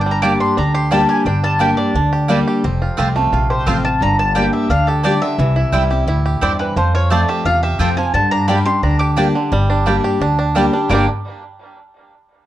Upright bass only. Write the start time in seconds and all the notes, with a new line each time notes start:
Already playing: G1
0.58 D2
1.26 G1
1.95 D2
2.64 F1
2.98 C2
3.32 A#1
3.66 A1
4.01 G1
4.69 D2
5.38 C2
5.73 C2
6.07 D2
6.42 E2
6.76 F2
7.45 E2
7.79 F2
8.14 G2
8.83 D2
9.52 G1
10.20 D2
10.90 G1